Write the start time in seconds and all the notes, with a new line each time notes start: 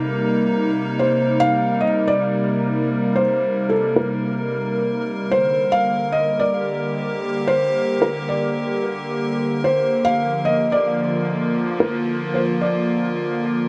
Already playing: C3 G3 A#3 D#4 A#4
0.99 C5
1.40 F5
1.81 D#5
2.08 D5
3.16 C5
3.69 A4
3.96 A#4
5.32 D3 C5
5.72 A#3 F5
6.12 D#5
6.39 D5
6.50 G4
7.47 C5
8.02 A#4
8.29 D5
9.64 C5
10.01 F3 F5
10.45 D#5
10.72 D5
10.87 F4
11.80 A#4
12.34 C5
12.61 D5